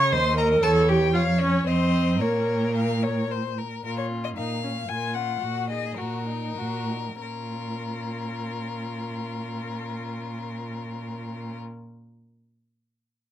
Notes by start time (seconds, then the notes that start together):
Already playing: C#3 C#5 C#6
0.12 D#2 C5 D#5 C6
0.37 A#4 A#5
0.62 E2 A4 C#5 A5
0.88 G4 G5
1.14 F2 F4 C#5 F5
1.40 C#4 C#5
1.66 F2 C4 C5 D#5
2.20 A#2 A#3 A#4 C#5
2.76 F5
3.03 C#5
3.31 C5
3.58 A#4
3.85 A#2 A#3 F4 A#4
3.98 C#5
4.11 C#4
4.24 D#5
4.36 A#2 A#3 D#4 F5
4.63 C#4
4.88 A#2 A#3 F4 G#5
5.14 C#4 F#5
5.42 A#2 F#4
5.69 D#4 G#4 D#5
5.98 A#2 F#4 A#4
6.27 D#4
6.57 A#2 F#4
6.90 D#4
7.21 A#2 C#4 F4 A#4